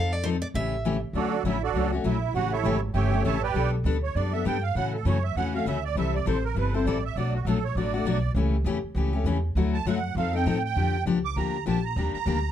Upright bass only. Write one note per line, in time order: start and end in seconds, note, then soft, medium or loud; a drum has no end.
0.00 0.42 F2 medium
0.54 1.02 A1 medium
1.13 1.43 D2 medium
1.44 1.73 A1 medium
1.74 2.03 C#2 medium
2.04 2.33 A#1 medium
2.34 2.63 A1 medium
2.64 2.93 G#1 medium
2.94 3.23 G1 medium
3.24 3.54 A1 medium
3.54 3.83 B1 medium
3.84 4.14 D2 medium
4.15 4.44 F#2 medium
4.45 4.74 G2 medium
4.75 5.04 A2 medium
5.05 5.34 F#2 medium
5.35 5.65 E2 medium
5.65 5.95 D2 medium
5.95 6.25 C2 medium
6.26 6.54 A1 medium
6.55 6.84 G1 medium
6.85 7.15 A1 medium
7.16 7.44 B1 medium
7.45 7.75 A#1 medium
7.75 8.05 A1 medium
8.05 8.34 B1 medium
8.34 8.64 C#2 medium
8.64 8.82 E2 loud
8.83 muted upright bass stroke soft
8.95 9.24 C#2 medium
9.24 9.54 E2 medium
9.55 9.85 D2 medium
9.85 10.14 F#2 medium
10.15 10.45 F2 loud
10.46 10.75 A2 medium
10.76 11.05 F2 medium
11.06 11.35 C#2 medium
11.36 11.65 D2 medium
11.66 11.95 A#1 medium
11.96 12.13 D#2 medium
12.14 muted upright bass stroke soft
12.26 12.52 D2 medium